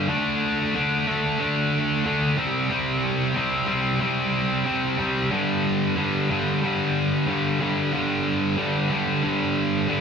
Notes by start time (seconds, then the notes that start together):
0.09 D3 A3 D4
0.75 D3 A3 D4
1.07 D3 A3 D4
1.40 D3 A3 D4
2.05 D3 A3 D4
2.37 C3 G3 C4
2.71 C3 G3 C4
3.35 C3 G3 C4
3.68 C3 G3 C4
4.00 C3 G3 C4
4.65 C3 G3 C4
4.98 C3 G3 C4
5.31 G2 D3 G3
5.96 G2 D3 G3
6.29 G2 D3 G3
6.62 G2 D3 G3
7.27 G2 D3 G3
7.60 G2 D3 G3
7.93 G2 D3 G3
8.58 G2 D3 G3
8.90 G2 D3 G3
9.23 G2 D3 G3
9.89 G2 D3 G3